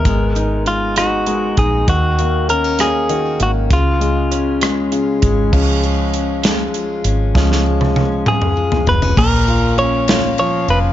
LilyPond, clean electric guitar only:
\new Staff \with { instrumentName = "Clean electric guitar" } { \time 6/8 \key cis \mixolydian \tempo 4. = 66 ais'4 eis'8 fis'4 gis'8 | fis'4 ais'8 gis'4 fis'8 | eis'2~ eis'8 r8 | r2. |
r4. gis'4 b'8 | ais'4 cis''4 cis''8 b'8 | }